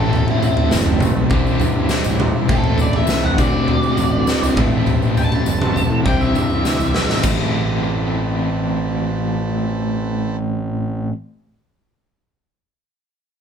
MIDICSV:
0, 0, Header, 1, 6, 480
1, 0, Start_track
1, 0, Tempo, 592885
1, 103, Time_signature, 4, 2, 24, 8
1, 10854, End_track
2, 0, Start_track
2, 0, Title_t, "Lead electric guitar"
2, 0, Program_c, 0, 29
2, 0, Note_on_c, 0, 69, 82
2, 216, Note_off_c, 0, 69, 0
2, 247, Note_on_c, 0, 64, 81
2, 351, Note_off_c, 0, 64, 0
2, 361, Note_on_c, 0, 64, 92
2, 584, Note_off_c, 0, 64, 0
2, 2031, Note_on_c, 0, 69, 94
2, 2257, Note_off_c, 0, 69, 0
2, 2279, Note_on_c, 0, 74, 83
2, 2385, Note_off_c, 0, 74, 0
2, 2399, Note_on_c, 0, 76, 82
2, 2621, Note_off_c, 0, 76, 0
2, 2630, Note_on_c, 0, 78, 78
2, 2740, Note_off_c, 0, 78, 0
2, 2748, Note_on_c, 0, 74, 89
2, 3674, Note_off_c, 0, 74, 0
2, 4191, Note_on_c, 0, 81, 85
2, 4884, Note_off_c, 0, 81, 0
2, 4915, Note_on_c, 0, 79, 83
2, 5028, Note_off_c, 0, 79, 0
2, 5028, Note_on_c, 0, 76, 81
2, 5141, Note_off_c, 0, 76, 0
2, 5152, Note_on_c, 0, 76, 91
2, 5846, Note_off_c, 0, 76, 0
2, 10854, End_track
3, 0, Start_track
3, 0, Title_t, "Transistor combo organ"
3, 0, Program_c, 1, 18
3, 0, Note_on_c, 1, 60, 63
3, 0, Note_on_c, 1, 69, 55
3, 0, Note_on_c, 1, 71, 77
3, 1061, Note_off_c, 1, 60, 0
3, 1061, Note_off_c, 1, 71, 0
3, 1064, Note_off_c, 1, 69, 0
3, 1067, Note_on_c, 1, 62, 65
3, 1067, Note_on_c, 1, 64, 58
3, 1074, Note_on_c, 1, 72, 72
3, 2012, Note_off_c, 1, 62, 0
3, 2012, Note_off_c, 1, 64, 0
3, 2015, Note_off_c, 1, 72, 0
3, 2031, Note_on_c, 1, 60, 65
3, 2032, Note_on_c, 1, 71, 72
3, 2033, Note_on_c, 1, 69, 63
3, 2735, Note_on_c, 1, 72, 66
3, 2737, Note_off_c, 1, 60, 0
3, 2738, Note_off_c, 1, 69, 0
3, 2738, Note_off_c, 1, 71, 0
3, 2742, Note_on_c, 1, 62, 65
3, 2742, Note_on_c, 1, 66, 55
3, 3687, Note_off_c, 1, 72, 0
3, 3690, Note_off_c, 1, 62, 0
3, 3691, Note_off_c, 1, 66, 0
3, 3696, Note_on_c, 1, 60, 61
3, 3702, Note_on_c, 1, 71, 74
3, 3703, Note_on_c, 1, 69, 55
3, 4886, Note_off_c, 1, 60, 0
3, 4889, Note_off_c, 1, 71, 0
3, 4890, Note_off_c, 1, 69, 0
3, 4893, Note_on_c, 1, 62, 59
3, 4894, Note_on_c, 1, 64, 56
3, 4902, Note_on_c, 1, 72, 69
3, 5848, Note_off_c, 1, 62, 0
3, 5848, Note_off_c, 1, 64, 0
3, 5848, Note_on_c, 1, 71, 67
3, 5852, Note_off_c, 1, 72, 0
3, 5853, Note_on_c, 1, 60, 64
3, 5856, Note_on_c, 1, 69, 55
3, 8392, Note_off_c, 1, 71, 0
3, 8394, Note_off_c, 1, 60, 0
3, 8396, Note_off_c, 1, 69, 0
3, 10854, End_track
4, 0, Start_track
4, 0, Title_t, "Overdriven electric guitar"
4, 0, Program_c, 2, 29
4, 0, Note_on_c, 2, 45, 93
4, 0, Note_on_c, 2, 52, 88
4, 0, Note_on_c, 2, 57, 104
4, 0, Note_on_c, 2, 60, 109
4, 0, Note_on_c, 2, 64, 106
4, 1041, Note_off_c, 2, 45, 0
4, 1044, Note_off_c, 2, 52, 0
4, 1049, Note_off_c, 2, 57, 0
4, 1051, Note_on_c, 2, 48, 81
4, 1053, Note_off_c, 2, 64, 0
4, 1062, Note_on_c, 2, 52, 83
4, 1071, Note_off_c, 2, 60, 0
4, 1071, Note_on_c, 2, 55, 90
4, 1074, Note_on_c, 2, 60, 91
4, 1081, Note_on_c, 2, 64, 94
4, 1999, Note_off_c, 2, 48, 0
4, 2005, Note_off_c, 2, 52, 0
4, 2008, Note_on_c, 2, 45, 90
4, 2009, Note_off_c, 2, 55, 0
4, 2014, Note_off_c, 2, 64, 0
4, 2016, Note_on_c, 2, 52, 91
4, 2020, Note_off_c, 2, 60, 0
4, 2020, Note_on_c, 2, 57, 92
4, 2023, Note_on_c, 2, 60, 93
4, 2035, Note_on_c, 2, 64, 96
4, 2718, Note_off_c, 2, 45, 0
4, 2722, Note_off_c, 2, 52, 0
4, 2724, Note_off_c, 2, 57, 0
4, 2726, Note_on_c, 2, 50, 85
4, 2732, Note_off_c, 2, 64, 0
4, 2732, Note_on_c, 2, 57, 82
4, 2744, Note_off_c, 2, 60, 0
4, 2747, Note_on_c, 2, 60, 92
4, 2752, Note_on_c, 2, 66, 91
4, 3678, Note_off_c, 2, 50, 0
4, 3681, Note_off_c, 2, 57, 0
4, 3691, Note_off_c, 2, 66, 0
4, 3691, Note_on_c, 2, 45, 85
4, 3696, Note_on_c, 2, 52, 88
4, 3704, Note_off_c, 2, 60, 0
4, 3706, Note_on_c, 2, 57, 93
4, 3707, Note_on_c, 2, 60, 93
4, 3717, Note_on_c, 2, 64, 93
4, 4881, Note_off_c, 2, 45, 0
4, 4881, Note_off_c, 2, 52, 0
4, 4884, Note_on_c, 2, 48, 81
4, 4889, Note_off_c, 2, 57, 0
4, 4890, Note_off_c, 2, 60, 0
4, 4890, Note_on_c, 2, 52, 84
4, 4894, Note_off_c, 2, 64, 0
4, 4904, Note_on_c, 2, 55, 82
4, 4908, Note_on_c, 2, 60, 86
4, 4909, Note_on_c, 2, 64, 89
4, 5838, Note_off_c, 2, 48, 0
4, 5842, Note_off_c, 2, 52, 0
4, 5849, Note_off_c, 2, 55, 0
4, 5850, Note_off_c, 2, 60, 0
4, 5851, Note_off_c, 2, 64, 0
4, 5854, Note_on_c, 2, 45, 78
4, 5865, Note_on_c, 2, 52, 88
4, 5865, Note_on_c, 2, 57, 88
4, 5876, Note_on_c, 2, 60, 83
4, 5881, Note_on_c, 2, 64, 99
4, 8994, Note_off_c, 2, 45, 0
4, 8999, Note_off_c, 2, 52, 0
4, 8999, Note_off_c, 2, 57, 0
4, 9005, Note_off_c, 2, 60, 0
4, 9007, Note_off_c, 2, 64, 0
4, 10854, End_track
5, 0, Start_track
5, 0, Title_t, "Picked electric bass"
5, 0, Program_c, 3, 34
5, 0, Note_on_c, 3, 33, 87
5, 491, Note_off_c, 3, 33, 0
5, 591, Note_on_c, 3, 30, 93
5, 898, Note_off_c, 3, 30, 0
5, 945, Note_on_c, 3, 35, 88
5, 1047, Note_off_c, 3, 35, 0
5, 1062, Note_on_c, 3, 36, 91
5, 1268, Note_off_c, 3, 36, 0
5, 1301, Note_on_c, 3, 43, 78
5, 1508, Note_off_c, 3, 43, 0
5, 1658, Note_on_c, 3, 33, 81
5, 1866, Note_off_c, 3, 33, 0
5, 2020, Note_on_c, 3, 33, 88
5, 2435, Note_off_c, 3, 33, 0
5, 2499, Note_on_c, 3, 36, 91
5, 2706, Note_off_c, 3, 36, 0
5, 2740, Note_on_c, 3, 38, 86
5, 3155, Note_off_c, 3, 38, 0
5, 3216, Note_on_c, 3, 33, 78
5, 3425, Note_off_c, 3, 33, 0
5, 3582, Note_on_c, 3, 36, 84
5, 3684, Note_off_c, 3, 36, 0
5, 3699, Note_on_c, 3, 33, 85
5, 4324, Note_off_c, 3, 33, 0
5, 4424, Note_on_c, 3, 30, 92
5, 4734, Note_off_c, 3, 30, 0
5, 4778, Note_on_c, 3, 45, 91
5, 4883, Note_off_c, 3, 45, 0
5, 4909, Note_on_c, 3, 36, 90
5, 5113, Note_off_c, 3, 36, 0
5, 5147, Note_on_c, 3, 43, 83
5, 5352, Note_off_c, 3, 43, 0
5, 5385, Note_on_c, 3, 38, 67
5, 5491, Note_off_c, 3, 38, 0
5, 5500, Note_on_c, 3, 36, 71
5, 5608, Note_off_c, 3, 36, 0
5, 5627, Note_on_c, 3, 35, 77
5, 5732, Note_off_c, 3, 35, 0
5, 5740, Note_on_c, 3, 33, 67
5, 5848, Note_off_c, 3, 33, 0
5, 5859, Note_on_c, 3, 33, 87
5, 8964, Note_off_c, 3, 33, 0
5, 10854, End_track
6, 0, Start_track
6, 0, Title_t, "Drums"
6, 105, Note_on_c, 9, 43, 82
6, 119, Note_on_c, 9, 54, 23
6, 186, Note_off_c, 9, 43, 0
6, 200, Note_off_c, 9, 54, 0
6, 225, Note_on_c, 9, 43, 77
6, 306, Note_off_c, 9, 43, 0
6, 344, Note_on_c, 9, 43, 85
6, 350, Note_on_c, 9, 54, 60
6, 425, Note_off_c, 9, 43, 0
6, 430, Note_off_c, 9, 54, 0
6, 461, Note_on_c, 9, 43, 86
6, 542, Note_off_c, 9, 43, 0
6, 577, Note_on_c, 9, 38, 74
6, 585, Note_on_c, 9, 54, 77
6, 658, Note_off_c, 9, 38, 0
6, 666, Note_off_c, 9, 54, 0
6, 696, Note_on_c, 9, 43, 74
6, 776, Note_off_c, 9, 43, 0
6, 813, Note_on_c, 9, 43, 77
6, 813, Note_on_c, 9, 47, 70
6, 828, Note_on_c, 9, 54, 68
6, 894, Note_off_c, 9, 43, 0
6, 894, Note_off_c, 9, 47, 0
6, 909, Note_off_c, 9, 54, 0
6, 1050, Note_on_c, 9, 43, 74
6, 1058, Note_on_c, 9, 36, 96
6, 1131, Note_off_c, 9, 43, 0
6, 1139, Note_off_c, 9, 36, 0
6, 1186, Note_on_c, 9, 54, 24
6, 1267, Note_off_c, 9, 54, 0
6, 1293, Note_on_c, 9, 43, 71
6, 1302, Note_on_c, 9, 54, 68
6, 1374, Note_off_c, 9, 43, 0
6, 1382, Note_off_c, 9, 54, 0
6, 1530, Note_on_c, 9, 54, 82
6, 1535, Note_on_c, 9, 38, 70
6, 1611, Note_off_c, 9, 54, 0
6, 1616, Note_off_c, 9, 38, 0
6, 1653, Note_on_c, 9, 54, 73
6, 1734, Note_off_c, 9, 54, 0
6, 1779, Note_on_c, 9, 43, 82
6, 1779, Note_on_c, 9, 47, 76
6, 1860, Note_off_c, 9, 43, 0
6, 1860, Note_off_c, 9, 47, 0
6, 2011, Note_on_c, 9, 54, 27
6, 2017, Note_on_c, 9, 43, 82
6, 2018, Note_on_c, 9, 36, 105
6, 2092, Note_off_c, 9, 54, 0
6, 2098, Note_off_c, 9, 43, 0
6, 2099, Note_off_c, 9, 36, 0
6, 2134, Note_on_c, 9, 43, 77
6, 2215, Note_off_c, 9, 43, 0
6, 2249, Note_on_c, 9, 43, 78
6, 2259, Note_on_c, 9, 54, 67
6, 2330, Note_off_c, 9, 43, 0
6, 2340, Note_off_c, 9, 54, 0
6, 2374, Note_on_c, 9, 43, 84
6, 2455, Note_off_c, 9, 43, 0
6, 2485, Note_on_c, 9, 54, 89
6, 2500, Note_on_c, 9, 38, 67
6, 2565, Note_off_c, 9, 54, 0
6, 2581, Note_off_c, 9, 38, 0
6, 2621, Note_on_c, 9, 43, 77
6, 2702, Note_off_c, 9, 43, 0
6, 2739, Note_on_c, 9, 36, 98
6, 2742, Note_on_c, 9, 43, 77
6, 2742, Note_on_c, 9, 47, 68
6, 2742, Note_on_c, 9, 54, 70
6, 2820, Note_off_c, 9, 36, 0
6, 2823, Note_off_c, 9, 43, 0
6, 2823, Note_off_c, 9, 47, 0
6, 2823, Note_off_c, 9, 54, 0
6, 2979, Note_on_c, 9, 43, 79
6, 3060, Note_off_c, 9, 43, 0
6, 3100, Note_on_c, 9, 54, 25
6, 3181, Note_off_c, 9, 54, 0
6, 3215, Note_on_c, 9, 43, 69
6, 3220, Note_on_c, 9, 54, 68
6, 3296, Note_off_c, 9, 43, 0
6, 3301, Note_off_c, 9, 54, 0
6, 3457, Note_on_c, 9, 54, 82
6, 3461, Note_on_c, 9, 38, 71
6, 3538, Note_off_c, 9, 54, 0
6, 3542, Note_off_c, 9, 38, 0
6, 3588, Note_on_c, 9, 54, 73
6, 3669, Note_off_c, 9, 54, 0
6, 3699, Note_on_c, 9, 43, 86
6, 3699, Note_on_c, 9, 47, 73
6, 3702, Note_on_c, 9, 36, 98
6, 3780, Note_off_c, 9, 43, 0
6, 3780, Note_off_c, 9, 47, 0
6, 3783, Note_off_c, 9, 36, 0
6, 3937, Note_on_c, 9, 54, 27
6, 3943, Note_on_c, 9, 43, 76
6, 4018, Note_off_c, 9, 54, 0
6, 4024, Note_off_c, 9, 43, 0
6, 4066, Note_on_c, 9, 54, 25
6, 4147, Note_off_c, 9, 54, 0
6, 4187, Note_on_c, 9, 54, 60
6, 4188, Note_on_c, 9, 43, 73
6, 4268, Note_off_c, 9, 54, 0
6, 4269, Note_off_c, 9, 43, 0
6, 4307, Note_on_c, 9, 43, 84
6, 4310, Note_on_c, 9, 54, 23
6, 4388, Note_off_c, 9, 43, 0
6, 4391, Note_off_c, 9, 54, 0
6, 4420, Note_on_c, 9, 54, 83
6, 4501, Note_off_c, 9, 54, 0
6, 4546, Note_on_c, 9, 43, 66
6, 4546, Note_on_c, 9, 47, 76
6, 4627, Note_off_c, 9, 43, 0
6, 4627, Note_off_c, 9, 47, 0
6, 4663, Note_on_c, 9, 43, 72
6, 4671, Note_on_c, 9, 54, 69
6, 4744, Note_off_c, 9, 43, 0
6, 4752, Note_off_c, 9, 54, 0
6, 4903, Note_on_c, 9, 36, 96
6, 4903, Note_on_c, 9, 43, 75
6, 4917, Note_on_c, 9, 54, 23
6, 4984, Note_off_c, 9, 36, 0
6, 4984, Note_off_c, 9, 43, 0
6, 4998, Note_off_c, 9, 54, 0
6, 5028, Note_on_c, 9, 54, 25
6, 5109, Note_off_c, 9, 54, 0
6, 5143, Note_on_c, 9, 43, 68
6, 5146, Note_on_c, 9, 54, 62
6, 5223, Note_off_c, 9, 43, 0
6, 5227, Note_off_c, 9, 54, 0
6, 5260, Note_on_c, 9, 54, 22
6, 5341, Note_off_c, 9, 54, 0
6, 5385, Note_on_c, 9, 54, 78
6, 5386, Note_on_c, 9, 38, 54
6, 5466, Note_off_c, 9, 54, 0
6, 5467, Note_off_c, 9, 38, 0
6, 5507, Note_on_c, 9, 54, 63
6, 5588, Note_off_c, 9, 54, 0
6, 5622, Note_on_c, 9, 38, 76
6, 5703, Note_off_c, 9, 38, 0
6, 5746, Note_on_c, 9, 38, 74
6, 5751, Note_on_c, 9, 54, 22
6, 5827, Note_off_c, 9, 38, 0
6, 5832, Note_off_c, 9, 54, 0
6, 5856, Note_on_c, 9, 49, 73
6, 5859, Note_on_c, 9, 36, 93
6, 5866, Note_on_c, 9, 54, 74
6, 5937, Note_off_c, 9, 49, 0
6, 5940, Note_off_c, 9, 36, 0
6, 5947, Note_off_c, 9, 54, 0
6, 10854, End_track
0, 0, End_of_file